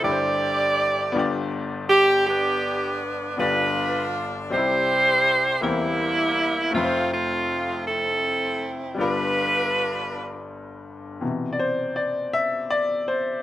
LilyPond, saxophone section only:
\new Staff \with { instrumentName = "Saxophone section" } { \time 6/8 \key c \major \tempo 4. = 54 << { d''2 r8 g'8 | g'4 r8 b'4 r8 | c''4. e'4. | f'8 f'4 a'4 r8 |
b'2 r4 | r2. | } \\ { g'2 r4 | <b d'>4. <d' f'>4. | <e' g'>4. <g bes>4. | <a c'>8 <a c'>4 <c' e'>4. |
<d' f'>2 r4 | r2. | } >> }